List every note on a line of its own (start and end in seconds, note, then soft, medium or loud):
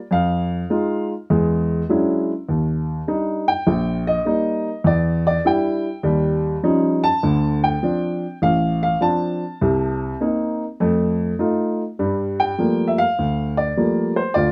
0.11 0.62 F2 medium
0.11 1.06 F5 medium
0.70 1.11 G#3 medium
0.70 1.11 D#4 soft
0.70 1.12 F4 medium
1.30 1.81 E2 medium
1.30 1.81 G#3 medium
1.89 2.30 F#3 medium
1.89 2.30 G#3 soft
1.89 2.31 C#4 soft
1.89 2.31 D4 soft
1.89 2.31 E4 medium
2.49 2.99 D#2 medium
3.08 3.49 G3 medium
3.08 3.49 D4 medium
3.08 3.49 D#4 medium
3.48 4.03 G5 medium
3.67 4.18 A#1 medium
4.07 4.81 D#5 medium
4.25 4.67 G3 medium
4.25 4.68 A#3 soft
4.25 4.68 D#4 medium
4.84 5.36 E2 medium
4.84 5.25 D5 medium
5.27 5.44 D5 medium
5.45 5.86 G3 medium
5.45 5.87 D4 soft
5.45 5.87 E4 medium
5.45 6.41 G5 medium
6.03 6.55 D#2 medium
6.03 6.55 G3 medium
6.63 7.05 F3 medium
6.63 7.05 G3 medium
6.63 7.05 C#4 medium
6.63 7.05 D#4 medium
7.04 7.59 A5 loud
7.23 7.74 D2 medium
7.23 7.74 D3 medium
7.64 8.38 G5 medium
7.83 8.24 F3 medium
7.83 8.24 C4 soft
7.83 8.25 D4 medium
8.42 8.93 A1 medium
8.42 8.81 F5 medium
8.83 9.01 F5 medium
9.01 9.43 F3 medium
9.01 9.43 C4 medium
9.01 9.43 D4 medium
9.01 9.97 A5 medium
9.61 10.12 C2 medium
9.61 10.12 C3 medium
10.21 10.62 A#3 medium
10.21 10.62 C4 soft
10.21 10.63 D#4 medium
10.80 11.31 F2 medium
10.80 11.31 A3 medium
11.39 11.81 A3 medium
11.39 11.81 D#4 medium
11.39 11.81 F4 medium
11.99 12.50 G2 medium
11.99 12.50 G3 medium
12.40 12.91 G5 medium
12.58 13.00 F3 soft
12.58 13.00 G3 soft
12.58 13.01 A3 soft
12.58 13.01 A#3 medium
12.88 12.97 E5 medium
12.98 13.54 F5 loud
13.19 13.70 D2 medium
13.57 14.13 D5 medium
13.77 14.19 F3 medium
13.77 14.19 G3 soft
13.77 14.20 A3 soft
13.77 14.19 A#3 medium
14.16 14.35 C5 medium
14.34 14.52 D2 medium
14.34 14.52 F4 medium
14.34 14.52 D5 medium